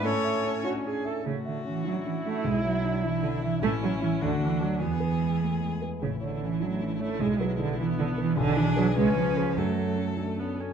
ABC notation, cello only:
X:1
M:6/8
L:1/8
Q:3/8=101
K:A
V:1 name="Cello" clef=bass
A3 F G A | C, D, E, F, E, A, | G, F,2 E, D, E, | A, F, E, D, E, F, |
E,4- E, z | C, D, E, F, E, A, | G, F, D, E, D, E, | [K:F#m] D, E, F, G, ^E,2 |
F,3 z3 |]